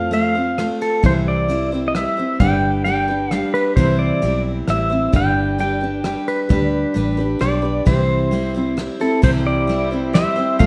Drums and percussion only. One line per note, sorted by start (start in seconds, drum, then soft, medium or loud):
0.12 ride medium
0.58 cross-stick medium
0.58 ride medium
0.81 ride medium
1.04 kick loud
1.04 ride medium
1.49 ride medium
1.95 cross-stick medium
1.95 ride medium
2.40 kick loud
2.40 ride medium
2.86 ride medium
3.31 cross-stick medium
3.31 ride medium
3.54 ride medium
3.77 kick loud
3.77 ride medium
4.22 ride medium
4.68 cross-stick medium
4.68 ride medium
5.13 kick loud
5.13 ride medium
5.59 ride medium
6.04 cross-stick medium
6.04 ride medium
6.28 ride medium
6.50 kick loud
6.50 ride medium
6.96 ride medium
7.41 cross-stick medium
7.41 ride medium
7.87 kick loud
7.87 ride medium
8.32 ride medium
8.78 cross-stick medium
8.78 ride medium
9.00 ride medium
9.23 kick loud
9.23 crash medium
9.69 ride medium
10.15 snare medium
10.15 ride medium
10.60 kick loud
10.60 ride medium